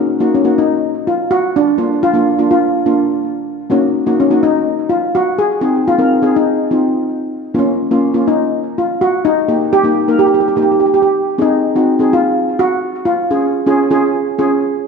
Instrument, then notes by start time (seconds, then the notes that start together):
steel pan
Already playing: C#4
0.20 A#3 D#4 F#4
0.34 C#4
0.44 A#3 D#4 F#4
0.58 D#4
1.07 F4
1.31 F#4
1.56 D4
1.78 A#3 D4 F4
2.03 F4
2.14 A#3 D4 F4
2.38 A#3 D4 F4
2.51 F4
2.86 A#3 D4 F4
3.70 A#3 C#4 D#4 F#4
4.06 A#3 D#4 F#4
4.20 C#4
4.30 A#3 D#4 F#4
4.43 D#4
4.89 F4
5.15 F#4
5.39 G#4
5.61 C4 D#4 G#4
5.88 F4
5.99 C4 D#4 A#4
6.22 C4 D#4 G#4
6.36 D#4
6.71 C4 D#4 F4
7.54 A#3 C#4 F4
7.59 C#4
7.91 A#3 C#4 F4
8.14 A#3 C#4 F4
8.28 D#4
8.78 F4
9.01 F#4
9.25 D#4
9.48 A#3 D#4 G4
9.73 G4
9.84 A#3 D#4 G4
10.08 A#3 D#4 A#4
10.19 G4
10.27 G4
10.34 G4
10.40 G4
10.48 G4
10.56 A#3 D#4 G4
10.62 G4
10.72 G4
10.80 G4
10.86 G4
10.94 G4
11.02 G4
11.38 C4 D#4 G#4
11.76 C4 D#4 F#4
11.99 C4 D#4 G#4
12.13 F4
12.59 F#4
13.05 F4
13.30 C#4 F4 G#4
13.66 C#4 F4 G#4
13.91 C#4 F4 G#4
14.38 C#4 F4 G#4